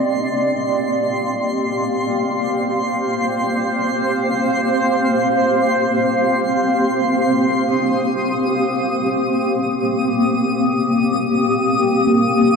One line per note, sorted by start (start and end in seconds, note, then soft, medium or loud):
0.00 12.56 A#3 medium
0.00 12.56 C4 medium
0.00 12.56 G4 medium
0.00 2.29 D5 medium
0.00 1.08 D#5 medium
0.00 7.48 C6 medium
0.83 10.45 F5 medium
2.02 9.24 C5 medium
7.46 12.56 D#6 medium
7.71 9.75 D4 soft
12.07 12.56 A#3 medium